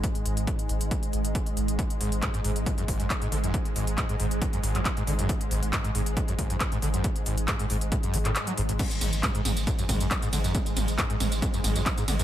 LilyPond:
<<
  \new Staff \with { instrumentName = "Synth drone" } { \clef bass \time 4/4 \tempo 4 = 137 <gis, gis>1~ | <gis, gis>1~ | <gis, gis>1~ | <gis, gis>1~ |
<gis, gis>1 | <gis, gis>1~ | <gis, gis>1 | }
  \new Staff \with { instrumentName = "Acid bass" } { \clef bass \time 4/4 r1 | gis,16 r16 gis,,16 r16 gis,16 gis,16 gis,16 r16 a,16 fis,16 gis,,16 fis,16 r16 gis,16 d16 fis,16 | gis,16 r16 gis,,16 r16 gis,16 gis,16 gis,16 r16 a,16 fis,16 gis,,16 fis,16 r16 gis,16 d16 fis,16 | r8 gis,,16 r16 gis,16 gis,16 gis,16 r16 a,16 fis,16 gis,,16 fis,16 r16 gis,16 d16 fis,16 |
gis,16 r16 gis,,16 r16 gis,16 gis,16 gis,16 r16 a,16 fis,16 gis16 a,16 r16 fis16 gis,16 gis,,16 | gis,16 r16 gis,,16 r16 gis,16 gis,16 gis,16 r16 a,16 fis,16 gis,,16 fis,16 r16 gis,16 d16 fis,16 | gis,16 r16 gis,,16 r16 gis,16 gis,16 gis,16 r16 a,16 fis,16 gis,,16 fis,16 r16 gis,16 d16 fis,16 | }
  \new Staff \with { instrumentName = "Sub bass" } { \clef bass \time 4/4 r8 gis,,16 gis,,16 r8 gis,,16 gis,,16 r8 gis,,16 gis,,16 r8 gis,,16 gis,,16 | r8 gis,,16 gis,,16 r8 gis,,16 gis,,16 r8 gis,,16 gis,,16 r8 gis,,16 gis,,16 | r8 gis,,16 gis,,16 r8 gis,,16 gis,,16 r8 gis,,16 gis,,16 r8 gis,,16 gis,,16 | r8 gis,,16 gis,,16 r8 gis,,16 gis,,16 r8 gis,,16 gis,,16 r8 gis,,16 gis,,16 |
r8 gis,,16 gis,,16 r8 gis,,16 gis,,16 r8 gis,,16 gis,,16 r8 gis,,16 gis,,16 | r8 gis,,16 gis,,16 r8 gis,,16 gis,,16 r8 gis,,16 gis,,16 r8 gis,,16 gis,,16 | r8 gis,,16 gis,,16 r8 gis,,16 gis,,16 r8 gis,,16 gis,,16 r8 gis,,16 gis,,16 | }
  \new DrumStaff \with { instrumentName = "Drums" } \drummode { \time 4/4 <hh bd>16 hh16 hh16 hh16 <hh bd>16 hh16 hh16 hh16 <hh bd>16 hh16 hh16 hh16 <hh bd>16 hh16 hh16 hh16 | <hh bd>16 hh16 hho16 hh16 <hc hh bd>16 hh16 hho16 hh16 <hh bd>16 hh16 <hho bd>16 hh16 <hc hh bd>16 hh16 hho16 hh16 | <hh bd>16 hh16 hho16 hh16 <hc hh bd>16 hh16 hho16 hh16 <hh bd>16 hh16 hho16 <hc hh>16 <hc hh bd>16 hh16 hho16 hh16 | <hh bd>16 hh16 hho16 hh16 <hc hh bd>16 hh16 hho16 hh16 <hh bd>16 hh16 <hho bd>16 hh16 <hc hh bd>16 hh16 hho16 hh16 |
<hh bd>16 hh16 hho16 hh16 <hc hh bd>16 hh16 hho16 hh16 <hh bd>16 hh16 hho16 <hc hh>16 <hc hh>16 hh16 hho16 hh16 | <cymc hh bd tamb toml>16 <hh tamb>16 <hho cymr tamb toml>16 <hh tamb>16 <hc hh bd tamb toml>16 hh16 <hho cymr tamb toml>16 <hh tamb>16 <hh bd tamb toml>16 <hh tamb>16 <hho bd cymr tamb toml>16 <hh tamb>16 <hc hh bd tamb toml>16 <hh tamb>16 <hho cymr tamb toml>16 <hh tamb>16 | <hh bd tamb toml>16 <hh tamb>16 <hho cymr tamb toml>16 <hh tamb>16 <hc hh bd tamb toml>16 hh16 <hho cymr tamb toml>16 <hh tamb>16 <hh bd tamb toml>16 <hh tamb>16 <hho cymr tamb toml>16 <hh tamb>16 <hc hh bd tamb toml>16 <hh tamb>16 <hho cymr tamb toml>16 <hh tamb>16 | }
>>